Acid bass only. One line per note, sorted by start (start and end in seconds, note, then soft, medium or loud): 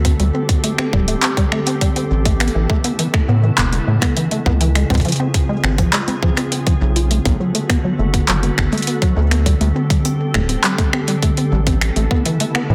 0.05 0.13 C4 loud
0.20 0.28 G3 medium
0.34 0.43 C4 medium
0.64 0.72 A3 medium
0.79 0.91 C4 medium
0.93 1.06 G3 medium
1.08 1.16 A3 medium
1.23 1.31 C4 loud
1.37 1.46 G3 loud
1.52 1.60 A3 medium
1.67 1.75 C4 loud
1.82 1.90 G3 medium
1.96 2.05 C4 medium
2.26 2.34 A3 medium
2.40 2.53 B3 medium
2.55 2.68 E3 medium
2.70 2.78 A3 medium
2.84 2.93 B3 loud
2.99 3.07 E3 loud
3.14 3.22 A3 medium
3.28 3.37 B3 loud
3.43 3.52 E3 medium
3.58 3.66 B3 medium
3.87 3.96 A3 medium
4.02 4.15 B3 medium
4.17 4.29 E3 medium
4.32 4.40 A3 medium
4.46 4.54 B3 loud
4.61 4.69 E3 loud
4.76 4.84 G#3 medium
4.90 4.99 C4 loud
5.05 5.13 F3 medium
5.20 5.28 C4 medium
5.49 5.57 G#3 medium
5.64 5.76 C4 medium
5.79 5.91 F3 medium
5.93 6.01 G#3 medium
6.08 6.16 C4 loud
6.23 6.31 F3 loud
6.37 6.46 C4 medium
6.52 6.60 C4 medium
6.67 6.75 F3 medium
6.96 7.09 F4 medium
7.11 7.19 A3 medium
7.26 7.38 B3 medium
7.40 7.53 F#3 medium
7.55 7.60 A3 loud
7.70 7.78 B3 loud
7.84 7.93 F#3 loud
7.99 8.07 A3 medium
8.14 8.22 B3 loud
8.28 8.37 F#3 medium
8.43 8.51 B3 medium
8.72 8.81 A3 medium
8.87 9.00 B3 medium
9.02 9.15 F#3 medium
9.17 9.22 A3 loud
9.31 9.40 B3 loud
9.46 9.54 G3 loud
9.61 9.69 A3 medium
9.76 9.84 C4 loud
9.90 9.99 G3 medium
10.05 10.13 C4 medium
10.34 10.43 A3 medium
10.49 10.62 C4 medium
10.64 10.76 G3 medium
10.79 10.84 A3 loud
10.93 11.02 C4 loud
11.08 11.16 G3 loud
11.23 11.31 A3 medium
11.38 11.46 C4 loud
11.52 11.60 G3 medium
11.67 11.75 C4 medium
11.96 12.05 A3 medium
12.11 12.24 B3 medium
12.26 12.38 E3 medium
12.41 12.45 A3 loud
12.55 12.63 B3 loud
12.70 12.75 E3 loud